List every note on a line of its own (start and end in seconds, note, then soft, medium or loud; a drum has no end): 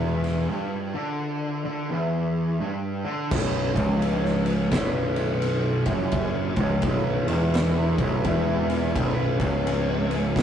0.00 0.46 E1 medium
0.00 0.49 E2 loud
0.24 snare soft
0.24 ride medium
0.50 0.93 G2 loud
0.94 1.63 D3 loud
1.65 1.90 D3 medium
1.90 2.60 E2 loud
2.60 3.04 G2 loud
3.05 3.30 D3 loud
3.31 3.73 B0 medium
3.31 3.74 B1 loud
3.31 kick loud
3.31 crash loud
3.74 4.68 C#1 loud
3.74 4.71 C#2 loud
3.74 kick loud
3.74 ride medium
4.02 ride loud
4.25 snare soft
4.46 ride medium
4.71 5.83 B0 loud
4.71 5.85 B1 loud
4.71 kick loud
4.71 snare loud
4.71 ride loud
5.16 ride medium
5.42 ride loud
5.86 6.53 F#1 loud
5.86 6.56 F#2 loud
5.86 kick loud
5.86 ride medium
6.12 kick loud
6.12 ride loud
6.56 6.81 C#1 loud
6.56 6.83 C#2 loud
6.56 kick loud
6.56 ride medium
6.82 7.24 B0 loud
6.82 7.27 B1 loud
6.82 kick loud
6.82 ride loud
7.27 7.94 E1 loud
7.27 7.96 E2 loud
7.27 ride medium
7.54 snare loud
7.54 ride loud
7.98 8.23 B0 loud
7.98 8.25 B1 loud
7.98 kick loud
7.98 ride medium
8.24 8.91 E1 loud
8.24 8.94 E2 loud
8.24 kick loud
8.24 ride loud
8.70 ride medium
8.95 9.36 B0 medium
8.95 9.38 B1 loud
8.95 kick loud
8.95 ride loud
9.40 10.32 C#1 loud
9.40 10.35 C#2 loud
9.40 kick loud
9.40 ride medium
9.67 ride loud
10.11 ride medium
10.35 10.43 B0 loud
10.35 10.43 B1 loud
10.35 kick loud
10.35 snare loud
10.35 ride loud